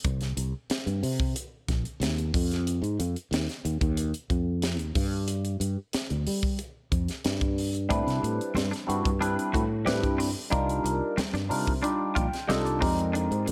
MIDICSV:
0, 0, Header, 1, 6, 480
1, 0, Start_track
1, 0, Tempo, 655022
1, 28, Time_signature, 4, 2, 24, 8
1, 9906, End_track
2, 0, Start_track
2, 0, Title_t, "Tine electric piano"
2, 0, Program_c, 0, 4
2, 5779, Note_on_c, 0, 55, 86
2, 5780, Note_on_c, 0, 60, 76
2, 5783, Note_on_c, 0, 62, 75
2, 5786, Note_on_c, 0, 64, 80
2, 5790, Note_on_c, 0, 71, 96
2, 6257, Note_off_c, 0, 55, 0
2, 6257, Note_off_c, 0, 60, 0
2, 6258, Note_off_c, 0, 62, 0
2, 6260, Note_off_c, 0, 64, 0
2, 6262, Note_off_c, 0, 71, 0
2, 6496, Note_on_c, 0, 55, 80
2, 6500, Note_on_c, 0, 60, 71
2, 6502, Note_on_c, 0, 62, 69
2, 6507, Note_on_c, 0, 64, 71
2, 6511, Note_on_c, 0, 66, 83
2, 6662, Note_off_c, 0, 55, 0
2, 6664, Note_off_c, 0, 60, 0
2, 6665, Note_off_c, 0, 62, 0
2, 6667, Note_off_c, 0, 64, 0
2, 6669, Note_off_c, 0, 66, 0
2, 6742, Note_on_c, 0, 55, 85
2, 6743, Note_on_c, 0, 60, 79
2, 6747, Note_on_c, 0, 62, 75
2, 6748, Note_on_c, 0, 64, 81
2, 6753, Note_on_c, 0, 71, 92
2, 7061, Note_off_c, 0, 55, 0
2, 7062, Note_off_c, 0, 60, 0
2, 7064, Note_off_c, 0, 62, 0
2, 7064, Note_off_c, 0, 64, 0
2, 7067, Note_off_c, 0, 71, 0
2, 7219, Note_on_c, 0, 55, 74
2, 7221, Note_on_c, 0, 60, 72
2, 7225, Note_on_c, 0, 62, 66
2, 7228, Note_on_c, 0, 64, 75
2, 7232, Note_on_c, 0, 71, 79
2, 7540, Note_off_c, 0, 55, 0
2, 7541, Note_off_c, 0, 60, 0
2, 7543, Note_off_c, 0, 62, 0
2, 7544, Note_off_c, 0, 64, 0
2, 7547, Note_off_c, 0, 71, 0
2, 7696, Note_on_c, 0, 55, 88
2, 7701, Note_on_c, 0, 63, 78
2, 7702, Note_on_c, 0, 62, 77
2, 7705, Note_on_c, 0, 65, 73
2, 7710, Note_on_c, 0, 70, 99
2, 8175, Note_off_c, 0, 55, 0
2, 8177, Note_off_c, 0, 63, 0
2, 8178, Note_off_c, 0, 62, 0
2, 8179, Note_off_c, 0, 65, 0
2, 8182, Note_off_c, 0, 70, 0
2, 8420, Note_on_c, 0, 55, 78
2, 8424, Note_on_c, 0, 62, 77
2, 8425, Note_on_c, 0, 63, 71
2, 8429, Note_on_c, 0, 65, 64
2, 8433, Note_on_c, 0, 70, 87
2, 8583, Note_off_c, 0, 55, 0
2, 8585, Note_off_c, 0, 62, 0
2, 8586, Note_off_c, 0, 63, 0
2, 8588, Note_off_c, 0, 65, 0
2, 8589, Note_off_c, 0, 70, 0
2, 8659, Note_on_c, 0, 55, 84
2, 8663, Note_on_c, 0, 62, 68
2, 8665, Note_on_c, 0, 63, 77
2, 8669, Note_on_c, 0, 65, 72
2, 8672, Note_on_c, 0, 67, 86
2, 8906, Note_on_c, 0, 79, 62
2, 8980, Note_off_c, 0, 55, 0
2, 8982, Note_off_c, 0, 62, 0
2, 8983, Note_off_c, 0, 63, 0
2, 8984, Note_off_c, 0, 65, 0
2, 8986, Note_off_c, 0, 67, 0
2, 9131, Note_off_c, 0, 79, 0
2, 9141, Note_on_c, 0, 55, 71
2, 9145, Note_on_c, 0, 62, 78
2, 9148, Note_on_c, 0, 75, 68
2, 9149, Note_on_c, 0, 63, 67
2, 9149, Note_on_c, 0, 65, 69
2, 9155, Note_on_c, 0, 69, 87
2, 9262, Note_off_c, 0, 75, 0
2, 9272, Note_on_c, 0, 74, 71
2, 9378, Note_off_c, 0, 63, 0
2, 9379, Note_on_c, 0, 56, 88
2, 9384, Note_on_c, 0, 60, 66
2, 9386, Note_off_c, 0, 55, 0
2, 9386, Note_on_c, 0, 63, 73
2, 9388, Note_off_c, 0, 62, 0
2, 9389, Note_on_c, 0, 67, 75
2, 9390, Note_off_c, 0, 65, 0
2, 9392, Note_off_c, 0, 69, 0
2, 9392, Note_on_c, 0, 70, 83
2, 9605, Note_off_c, 0, 74, 0
2, 9906, Note_off_c, 0, 56, 0
2, 9906, Note_off_c, 0, 60, 0
2, 9906, Note_off_c, 0, 63, 0
2, 9906, Note_off_c, 0, 67, 0
2, 9906, Note_off_c, 0, 70, 0
2, 9906, End_track
3, 0, Start_track
3, 0, Title_t, "Clean electric guitar"
3, 0, Program_c, 1, 27
3, 5789, Note_on_c, 1, 62, 87
3, 5942, Note_off_c, 1, 62, 0
3, 6268, Note_on_c, 1, 60, 78
3, 6345, Note_off_c, 1, 60, 0
3, 6385, Note_on_c, 1, 62, 60
3, 6539, Note_off_c, 1, 62, 0
3, 6747, Note_on_c, 1, 62, 84
3, 6900, Note_off_c, 1, 62, 0
3, 6990, Note_on_c, 1, 66, 70
3, 7142, Note_off_c, 1, 66, 0
3, 7226, Note_on_c, 1, 67, 83
3, 7379, Note_off_c, 1, 67, 0
3, 7463, Note_on_c, 1, 60, 70
3, 7617, Note_off_c, 1, 60, 0
3, 7706, Note_on_c, 1, 62, 85
3, 7859, Note_off_c, 1, 62, 0
3, 8188, Note_on_c, 1, 60, 69
3, 8265, Note_off_c, 1, 60, 0
3, 8308, Note_on_c, 1, 62, 58
3, 8461, Note_off_c, 1, 62, 0
3, 8665, Note_on_c, 1, 62, 87
3, 8819, Note_off_c, 1, 62, 0
3, 8905, Note_on_c, 1, 65, 73
3, 9058, Note_off_c, 1, 65, 0
3, 9150, Note_on_c, 1, 67, 77
3, 9302, Note_off_c, 1, 67, 0
3, 9385, Note_on_c, 1, 60, 68
3, 9538, Note_off_c, 1, 60, 0
3, 9624, Note_on_c, 1, 62, 91
3, 9778, Note_off_c, 1, 62, 0
3, 9906, End_track
4, 0, Start_track
4, 0, Title_t, "Fretless electric bass"
4, 0, Program_c, 2, 35
4, 35, Note_on_c, 2, 36, 79
4, 253, Note_off_c, 2, 36, 0
4, 269, Note_on_c, 2, 36, 76
4, 380, Note_off_c, 2, 36, 0
4, 631, Note_on_c, 2, 43, 71
4, 740, Note_off_c, 2, 43, 0
4, 754, Note_on_c, 2, 48, 82
4, 973, Note_off_c, 2, 48, 0
4, 1236, Note_on_c, 2, 34, 84
4, 1340, Note_off_c, 2, 34, 0
4, 1465, Note_on_c, 2, 39, 88
4, 1689, Note_off_c, 2, 39, 0
4, 1716, Note_on_c, 2, 41, 101
4, 2047, Note_off_c, 2, 41, 0
4, 2064, Note_on_c, 2, 44, 83
4, 2177, Note_off_c, 2, 44, 0
4, 2194, Note_on_c, 2, 41, 84
4, 2304, Note_off_c, 2, 41, 0
4, 2425, Note_on_c, 2, 39, 87
4, 2539, Note_off_c, 2, 39, 0
4, 2672, Note_on_c, 2, 39, 89
4, 2783, Note_off_c, 2, 39, 0
4, 2791, Note_on_c, 2, 39, 85
4, 3013, Note_off_c, 2, 39, 0
4, 3150, Note_on_c, 2, 41, 76
4, 3505, Note_off_c, 2, 41, 0
4, 3505, Note_on_c, 2, 39, 86
4, 3618, Note_off_c, 2, 39, 0
4, 3630, Note_on_c, 2, 43, 102
4, 4081, Note_off_c, 2, 43, 0
4, 4103, Note_on_c, 2, 43, 81
4, 4219, Note_off_c, 2, 43, 0
4, 4473, Note_on_c, 2, 38, 74
4, 4582, Note_off_c, 2, 38, 0
4, 4597, Note_on_c, 2, 55, 81
4, 4816, Note_off_c, 2, 55, 0
4, 5068, Note_on_c, 2, 41, 80
4, 5181, Note_off_c, 2, 41, 0
4, 5311, Note_on_c, 2, 43, 80
4, 5762, Note_off_c, 2, 43, 0
4, 5790, Note_on_c, 2, 45, 73
4, 5902, Note_off_c, 2, 45, 0
4, 5911, Note_on_c, 2, 48, 77
4, 6021, Note_off_c, 2, 48, 0
4, 6029, Note_on_c, 2, 45, 77
4, 6142, Note_off_c, 2, 45, 0
4, 6269, Note_on_c, 2, 43, 85
4, 6382, Note_off_c, 2, 43, 0
4, 6512, Note_on_c, 2, 43, 75
4, 6623, Note_off_c, 2, 43, 0
4, 6634, Note_on_c, 2, 43, 82
4, 6855, Note_off_c, 2, 43, 0
4, 6993, Note_on_c, 2, 45, 83
4, 7354, Note_off_c, 2, 45, 0
4, 7354, Note_on_c, 2, 43, 87
4, 7575, Note_off_c, 2, 43, 0
4, 7710, Note_on_c, 2, 36, 85
4, 7932, Note_off_c, 2, 36, 0
4, 7944, Note_on_c, 2, 36, 79
4, 8059, Note_off_c, 2, 36, 0
4, 8304, Note_on_c, 2, 43, 83
4, 8417, Note_off_c, 2, 43, 0
4, 8426, Note_on_c, 2, 48, 81
4, 8650, Note_off_c, 2, 48, 0
4, 8913, Note_on_c, 2, 34, 81
4, 9024, Note_off_c, 2, 34, 0
4, 9154, Note_on_c, 2, 36, 98
4, 9374, Note_off_c, 2, 36, 0
4, 9393, Note_on_c, 2, 41, 94
4, 9725, Note_off_c, 2, 41, 0
4, 9752, Note_on_c, 2, 44, 82
4, 9861, Note_off_c, 2, 44, 0
4, 9877, Note_on_c, 2, 41, 84
4, 9906, Note_off_c, 2, 41, 0
4, 9906, End_track
5, 0, Start_track
5, 0, Title_t, "Muted fretless electric bass strokes"
5, 510, Note_on_c, 9, 29, 33
5, 583, Note_off_c, 9, 29, 0
5, 1345, Note_on_c, 9, 29, 34
5, 1418, Note_off_c, 9, 29, 0
5, 4352, Note_on_c, 9, 29, 34
5, 4425, Note_off_c, 9, 29, 0
5, 5189, Note_on_c, 9, 29, 32
5, 5263, Note_off_c, 9, 29, 0
5, 8187, Note_on_c, 9, 29, 33
5, 8261, Note_off_c, 9, 29, 0
5, 9029, Note_on_c, 9, 29, 36
5, 9103, Note_off_c, 9, 29, 0
5, 9906, End_track
6, 0, Start_track
6, 0, Title_t, "Drums"
6, 33, Note_on_c, 9, 42, 79
6, 34, Note_on_c, 9, 36, 104
6, 106, Note_off_c, 9, 42, 0
6, 108, Note_off_c, 9, 36, 0
6, 152, Note_on_c, 9, 42, 38
6, 160, Note_on_c, 9, 38, 31
6, 225, Note_off_c, 9, 42, 0
6, 234, Note_off_c, 9, 38, 0
6, 273, Note_on_c, 9, 42, 64
6, 346, Note_off_c, 9, 42, 0
6, 512, Note_on_c, 9, 42, 71
6, 521, Note_on_c, 9, 38, 99
6, 585, Note_off_c, 9, 42, 0
6, 594, Note_off_c, 9, 38, 0
6, 638, Note_on_c, 9, 42, 37
6, 712, Note_off_c, 9, 42, 0
6, 758, Note_on_c, 9, 46, 57
6, 831, Note_off_c, 9, 46, 0
6, 877, Note_on_c, 9, 36, 87
6, 950, Note_off_c, 9, 36, 0
6, 996, Note_on_c, 9, 42, 82
6, 1069, Note_off_c, 9, 42, 0
6, 1235, Note_on_c, 9, 36, 64
6, 1235, Note_on_c, 9, 42, 45
6, 1243, Note_on_c, 9, 38, 29
6, 1308, Note_off_c, 9, 36, 0
6, 1308, Note_off_c, 9, 42, 0
6, 1317, Note_off_c, 9, 38, 0
6, 1358, Note_on_c, 9, 42, 35
6, 1432, Note_off_c, 9, 42, 0
6, 1478, Note_on_c, 9, 42, 71
6, 1486, Note_on_c, 9, 38, 94
6, 1551, Note_off_c, 9, 42, 0
6, 1560, Note_off_c, 9, 38, 0
6, 1600, Note_on_c, 9, 42, 35
6, 1673, Note_off_c, 9, 42, 0
6, 1716, Note_on_c, 9, 36, 89
6, 1720, Note_on_c, 9, 46, 70
6, 1789, Note_off_c, 9, 36, 0
6, 1793, Note_off_c, 9, 46, 0
6, 1842, Note_on_c, 9, 42, 35
6, 1850, Note_on_c, 9, 38, 33
6, 1915, Note_off_c, 9, 42, 0
6, 1924, Note_off_c, 9, 38, 0
6, 1957, Note_on_c, 9, 42, 70
6, 2031, Note_off_c, 9, 42, 0
6, 2079, Note_on_c, 9, 42, 35
6, 2152, Note_off_c, 9, 42, 0
6, 2197, Note_on_c, 9, 42, 60
6, 2270, Note_off_c, 9, 42, 0
6, 2318, Note_on_c, 9, 42, 31
6, 2392, Note_off_c, 9, 42, 0
6, 2438, Note_on_c, 9, 42, 74
6, 2447, Note_on_c, 9, 38, 95
6, 2512, Note_off_c, 9, 42, 0
6, 2520, Note_off_c, 9, 38, 0
6, 2558, Note_on_c, 9, 42, 35
6, 2567, Note_on_c, 9, 38, 29
6, 2632, Note_off_c, 9, 42, 0
6, 2640, Note_off_c, 9, 38, 0
6, 2677, Note_on_c, 9, 42, 56
6, 2750, Note_off_c, 9, 42, 0
6, 2794, Note_on_c, 9, 36, 80
6, 2795, Note_on_c, 9, 42, 34
6, 2868, Note_off_c, 9, 36, 0
6, 2868, Note_off_c, 9, 42, 0
6, 2911, Note_on_c, 9, 42, 77
6, 2985, Note_off_c, 9, 42, 0
6, 3034, Note_on_c, 9, 42, 38
6, 3108, Note_off_c, 9, 42, 0
6, 3151, Note_on_c, 9, 36, 58
6, 3152, Note_on_c, 9, 42, 49
6, 3224, Note_off_c, 9, 36, 0
6, 3225, Note_off_c, 9, 42, 0
6, 3388, Note_on_c, 9, 42, 71
6, 3397, Note_on_c, 9, 38, 94
6, 3461, Note_off_c, 9, 42, 0
6, 3470, Note_off_c, 9, 38, 0
6, 3512, Note_on_c, 9, 42, 39
6, 3586, Note_off_c, 9, 42, 0
6, 3629, Note_on_c, 9, 46, 63
6, 3631, Note_on_c, 9, 36, 78
6, 3703, Note_off_c, 9, 46, 0
6, 3704, Note_off_c, 9, 36, 0
6, 3867, Note_on_c, 9, 42, 80
6, 3940, Note_off_c, 9, 42, 0
6, 3991, Note_on_c, 9, 42, 36
6, 4065, Note_off_c, 9, 42, 0
6, 4111, Note_on_c, 9, 42, 63
6, 4185, Note_off_c, 9, 42, 0
6, 4348, Note_on_c, 9, 42, 79
6, 4356, Note_on_c, 9, 38, 90
6, 4421, Note_off_c, 9, 42, 0
6, 4430, Note_off_c, 9, 38, 0
6, 4472, Note_on_c, 9, 42, 34
6, 4545, Note_off_c, 9, 42, 0
6, 4592, Note_on_c, 9, 46, 60
6, 4665, Note_off_c, 9, 46, 0
6, 4711, Note_on_c, 9, 36, 73
6, 4785, Note_off_c, 9, 36, 0
6, 4828, Note_on_c, 9, 42, 74
6, 4901, Note_off_c, 9, 42, 0
6, 5070, Note_on_c, 9, 36, 67
6, 5071, Note_on_c, 9, 42, 53
6, 5143, Note_off_c, 9, 36, 0
6, 5144, Note_off_c, 9, 42, 0
6, 5192, Note_on_c, 9, 42, 36
6, 5200, Note_on_c, 9, 38, 32
6, 5265, Note_off_c, 9, 42, 0
6, 5274, Note_off_c, 9, 38, 0
6, 5309, Note_on_c, 9, 42, 72
6, 5317, Note_on_c, 9, 38, 93
6, 5382, Note_off_c, 9, 42, 0
6, 5391, Note_off_c, 9, 38, 0
6, 5431, Note_on_c, 9, 42, 33
6, 5432, Note_on_c, 9, 36, 80
6, 5505, Note_off_c, 9, 36, 0
6, 5505, Note_off_c, 9, 42, 0
6, 5555, Note_on_c, 9, 46, 70
6, 5628, Note_off_c, 9, 46, 0
6, 5676, Note_on_c, 9, 42, 34
6, 5749, Note_off_c, 9, 42, 0
6, 5789, Note_on_c, 9, 62, 25
6, 5793, Note_on_c, 9, 36, 95
6, 5794, Note_on_c, 9, 42, 72
6, 5862, Note_off_c, 9, 62, 0
6, 5866, Note_off_c, 9, 36, 0
6, 5868, Note_off_c, 9, 42, 0
6, 5919, Note_on_c, 9, 42, 37
6, 5928, Note_on_c, 9, 38, 29
6, 5992, Note_off_c, 9, 42, 0
6, 6001, Note_off_c, 9, 38, 0
6, 6040, Note_on_c, 9, 42, 55
6, 6114, Note_off_c, 9, 42, 0
6, 6164, Note_on_c, 9, 42, 33
6, 6237, Note_off_c, 9, 42, 0
6, 6263, Note_on_c, 9, 63, 75
6, 6278, Note_on_c, 9, 42, 69
6, 6287, Note_on_c, 9, 38, 91
6, 6336, Note_off_c, 9, 63, 0
6, 6352, Note_off_c, 9, 42, 0
6, 6360, Note_off_c, 9, 38, 0
6, 6399, Note_on_c, 9, 42, 34
6, 6408, Note_on_c, 9, 38, 32
6, 6473, Note_off_c, 9, 42, 0
6, 6482, Note_off_c, 9, 38, 0
6, 6519, Note_on_c, 9, 42, 59
6, 6593, Note_off_c, 9, 42, 0
6, 6635, Note_on_c, 9, 36, 79
6, 6640, Note_on_c, 9, 42, 36
6, 6708, Note_off_c, 9, 36, 0
6, 6713, Note_off_c, 9, 42, 0
6, 6747, Note_on_c, 9, 62, 27
6, 6757, Note_on_c, 9, 42, 77
6, 6820, Note_off_c, 9, 62, 0
6, 6830, Note_off_c, 9, 42, 0
6, 6881, Note_on_c, 9, 42, 38
6, 6954, Note_off_c, 9, 42, 0
6, 6986, Note_on_c, 9, 62, 28
6, 6986, Note_on_c, 9, 63, 67
6, 6994, Note_on_c, 9, 36, 60
6, 7001, Note_on_c, 9, 42, 53
6, 7060, Note_off_c, 9, 62, 0
6, 7060, Note_off_c, 9, 63, 0
6, 7068, Note_off_c, 9, 36, 0
6, 7074, Note_off_c, 9, 42, 0
6, 7229, Note_on_c, 9, 63, 70
6, 7235, Note_on_c, 9, 42, 74
6, 7244, Note_on_c, 9, 38, 96
6, 7302, Note_off_c, 9, 63, 0
6, 7308, Note_off_c, 9, 42, 0
6, 7317, Note_off_c, 9, 38, 0
6, 7354, Note_on_c, 9, 36, 75
6, 7357, Note_on_c, 9, 42, 40
6, 7427, Note_off_c, 9, 36, 0
6, 7430, Note_off_c, 9, 42, 0
6, 7468, Note_on_c, 9, 62, 28
6, 7475, Note_on_c, 9, 46, 69
6, 7541, Note_off_c, 9, 62, 0
6, 7548, Note_off_c, 9, 46, 0
6, 7710, Note_on_c, 9, 62, 29
6, 7713, Note_on_c, 9, 36, 96
6, 7713, Note_on_c, 9, 42, 82
6, 7784, Note_off_c, 9, 62, 0
6, 7787, Note_off_c, 9, 36, 0
6, 7787, Note_off_c, 9, 42, 0
6, 7837, Note_on_c, 9, 42, 40
6, 7911, Note_off_c, 9, 42, 0
6, 7955, Note_on_c, 9, 42, 65
6, 8029, Note_off_c, 9, 42, 0
6, 8191, Note_on_c, 9, 63, 90
6, 8194, Note_on_c, 9, 42, 80
6, 8203, Note_on_c, 9, 38, 105
6, 8264, Note_off_c, 9, 63, 0
6, 8267, Note_off_c, 9, 42, 0
6, 8276, Note_off_c, 9, 38, 0
6, 8315, Note_on_c, 9, 42, 36
6, 8324, Note_on_c, 9, 38, 30
6, 8389, Note_off_c, 9, 42, 0
6, 8397, Note_off_c, 9, 38, 0
6, 8434, Note_on_c, 9, 46, 62
6, 8507, Note_off_c, 9, 46, 0
6, 8555, Note_on_c, 9, 36, 74
6, 8628, Note_off_c, 9, 36, 0
6, 8671, Note_on_c, 9, 62, 29
6, 8676, Note_on_c, 9, 42, 81
6, 8744, Note_off_c, 9, 62, 0
6, 8749, Note_off_c, 9, 42, 0
6, 8913, Note_on_c, 9, 36, 68
6, 8914, Note_on_c, 9, 62, 30
6, 8915, Note_on_c, 9, 42, 48
6, 8986, Note_off_c, 9, 36, 0
6, 8988, Note_off_c, 9, 62, 0
6, 8989, Note_off_c, 9, 42, 0
6, 9038, Note_on_c, 9, 42, 37
6, 9047, Note_on_c, 9, 38, 34
6, 9112, Note_off_c, 9, 42, 0
6, 9121, Note_off_c, 9, 38, 0
6, 9154, Note_on_c, 9, 63, 76
6, 9158, Note_on_c, 9, 42, 73
6, 9167, Note_on_c, 9, 38, 100
6, 9227, Note_off_c, 9, 63, 0
6, 9232, Note_off_c, 9, 42, 0
6, 9241, Note_off_c, 9, 38, 0
6, 9280, Note_on_c, 9, 42, 37
6, 9353, Note_off_c, 9, 42, 0
6, 9394, Note_on_c, 9, 36, 92
6, 9395, Note_on_c, 9, 62, 30
6, 9397, Note_on_c, 9, 46, 73
6, 9467, Note_off_c, 9, 36, 0
6, 9468, Note_off_c, 9, 62, 0
6, 9470, Note_off_c, 9, 46, 0
6, 9518, Note_on_c, 9, 42, 38
6, 9592, Note_off_c, 9, 42, 0
6, 9636, Note_on_c, 9, 62, 31
6, 9637, Note_on_c, 9, 42, 72
6, 9710, Note_off_c, 9, 62, 0
6, 9711, Note_off_c, 9, 42, 0
6, 9758, Note_on_c, 9, 42, 33
6, 9832, Note_off_c, 9, 42, 0
6, 9874, Note_on_c, 9, 42, 59
6, 9906, Note_off_c, 9, 42, 0
6, 9906, End_track
0, 0, End_of_file